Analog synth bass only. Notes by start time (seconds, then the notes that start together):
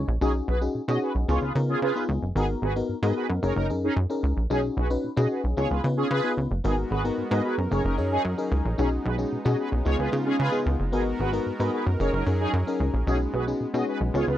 0.08 A#1
0.21 B1
0.48 B1
0.75 B2
0.88 B2
1.15 B1
1.29 C#2
1.42 C#2
1.55 C#3
1.82 C#3
2.09 C#2
2.23 F#1
2.35 G#1
2.62 G#1
2.89 G#2
3.03 G#2
3.30 F#2
3.43 F#1
3.56 F#1
3.70 F#2
3.97 F#2
4.23 C#2
4.37 A#1
4.50 B1
4.77 B1
5.04 B2
5.17 B2
5.44 B1
5.57 C#2
5.71 C#2
5.84 C#3
6.11 C#3
6.38 C#2
6.51 F#1
6.65 G#1
6.91 G#1
7.18 G#2
7.31 G#2
7.58 F#2
7.71 F#1
7.85 F#1
7.98 F#2
8.25 F#2
8.52 C#2
8.65 A#1
8.79 B1
9.06 B1
9.32 B2
9.46 B2
9.72 B1
9.86 C#2
9.99 C#2
10.13 C#3
10.40 C#3
10.66 C#2
10.80 F#1
10.93 G#1
11.20 G#1
11.46 G#2
11.60 G#2
11.87 F#2
12.00 F#1
12.13 F#1
12.27 F#2
12.53 F#2
12.80 C#2
12.94 A#1
13.07 B1
13.34 B1
13.61 B2
13.74 B2
14.01 B1
14.14 C#2
14.28 C#2